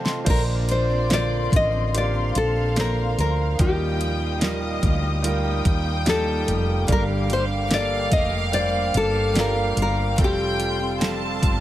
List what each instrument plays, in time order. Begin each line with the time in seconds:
Already playing: grand piano C3 A3 C4 F4 G4 A4 C5 D5 D#5 F5 G5 A5, steel-string acoustic guitar F3 C4 F4 A4, string section A4 C5 F5 C6, nylon-string guitar A4
0.05 grand piano D#5 C6, snare
0.24 fretless electric bass A#1, grand piano A#2 F3 A#3 D4 F4 C5, steel-string acoustic guitar A#2 D3 F3 C4 D4 A#4, string section A#3 C5 F5 C6, violin section D5, kick, closed hi-hat, crash
0.30 nylon-string guitar A#4
0.68 steel-string acoustic guitar F3 C4 D4 A#4, nylon-string guitar C5, closed hi-hat
0.89 steel-string acoustic guitar F3 C4 D4 A#4
1.09 steel-string acoustic guitar A#2 D3 F3 C4 D4 A#4, grand piano D3 A#3 F4 C5, snare, closed hi-hat
1.14 nylon-string guitar D5
1.51 fretless electric bass A1, steel-string acoustic guitar F3 C4 D4 A#4, kick, closed hi-hat
1.56 nylon-string guitar D#5
1.71 steel-string acoustic guitar F3 C4 D4 A#4
1.93 grand piano A#3 D4 F4 G4, violin section F5, closed hi-hat
1.98 nylon-string guitar D5
2.13 steel-string acoustic guitar F3 C4 D4 A#4
2.35 fretless electric bass A#1, nylon-string guitar A4, closed hi-hat
2.56 steel-string acoustic guitar F3 C4 D4 A#4
2.76 steel-string acoustic guitar A#2 D3 F3 C4 D4 A#4, grand piano A#3 D4 F4 C5, nylon-string guitar A#4, snare, closed hi-hat
2.97 steel-string acoustic guitar F3 C4 D4 A#4
3.18 fretless electric bass D2, steel-string acoustic guitar F3 C4 D4 A#4, nylon-string guitar A#4, closed hi-hat
3.59 fretless electric bass D#2, grand piano A#2 G3 D#4 F4 A#4, steel-string acoustic guitar D#3 F3 A#3 D#4 G4, nylon-string guitar G4, violin section G5, string section G5 D#6, kick, closed hi-hat
4.01 steel-string acoustic guitar F3 A#3 D#4 G4, closed hi-hat
4.20 steel-string acoustic guitar A#3 D#4 G4
4.41 steel-string acoustic guitar D#3 F3 A#3 D#4 G4, grand piano G3 D#4 F4 A#4, violin section D#5, snare, closed hi-hat
4.61 steel-string acoustic guitar A#3 D#4 G4
4.81 fretless electric bass D2, steel-string acoustic guitar F3 A#3 D#4 G4, kick, closed hi-hat
5.03 steel-string acoustic guitar A#3 D#4 G4
5.22 grand piano G3 D#4 F4 A#4, violin section G5, closed hi-hat
5.43 steel-string acoustic guitar A#3 D#4 G4
5.65 fretless electric bass D#2, kick, closed hi-hat
5.84 steel-string acoustic guitar A#3 D#4 G4
6.05 steel-string acoustic guitar D#3 F3 A#3 D#4 G4, grand piano G3 D#4 F4 G4, snare, closed hi-hat
6.09 nylon-string guitar A4
6.25 steel-string acoustic guitar A#3 D#4 G4
6.45 fretless electric bass F1, steel-string acoustic guitar F3 A#3 D#4 G4, closed hi-hat
6.87 fretless electric bass G1, steel-string acoustic guitar G2 D3 G3 A#3 D4 G4, grand piano G2 D3 G3 A#3 D4 A#4, violin section F5, string section D6, kick, closed hi-hat
6.92 nylon-string guitar A#4
7.27 steel-string acoustic guitar G3 A#3 D4 G4, closed hi-hat
7.33 nylon-string guitar C5
7.47 steel-string acoustic guitar G3 A#3 D4 G4
7.67 steel-string acoustic guitar G2 D3 G3 A#3 D4 G4, grand piano G3, closed hi-hat
7.71 grand piano A#3 A4, nylon-string guitar D5, snare
8.09 fretless electric bass F1, steel-string acoustic guitar G3 A#3 D4 G4, kick, closed hi-hat
8.13 nylon-string guitar D#5
8.29 steel-string acoustic guitar G3 A#3 D4 G4
8.52 grand piano G3 A#3 D4 C5, nylon-string guitar D5, closed hi-hat
8.71 steel-string acoustic guitar G3 A#3 D4 G4
8.94 fretless electric bass G1, nylon-string guitar A4, closed hi-hat
9.12 steel-string acoustic guitar G3 A#3 D4 G4
9.32 steel-string acoustic guitar G2 D3 G3 A#3 D4 G4, grand piano G3 A#3 D4 F4, snare, closed hi-hat
9.40 nylon-string guitar A#4
9.53 steel-string acoustic guitar G3 A#3 D4 G4
9.74 fretless electric bass G1, steel-string acoustic guitar G3 A#3 D4 G4, closed hi-hat
9.82 nylon-string guitar A#4
10.16 fretless electric bass F1, grand piano C3 G3 C4 F4 A4, steel-string acoustic guitar F3 A3 C4 F4 G4, string section A4 F5 C6, violin section G5, kick, closed hi-hat
10.24 nylon-string guitar G4
10.58 steel-string acoustic guitar A3 C4 F4 G4, closed hi-hat
10.79 steel-string acoustic guitar C4 F4 G4
10.99 steel-string acoustic guitar F3 A3 C4 F4 G4, grand piano G3 C4 F4 A4, violin section A5, snare, closed hi-hat
11.41 fretless electric bass G1, steel-string acoustic guitar A3 C4 F4 G4, kick, closed hi-hat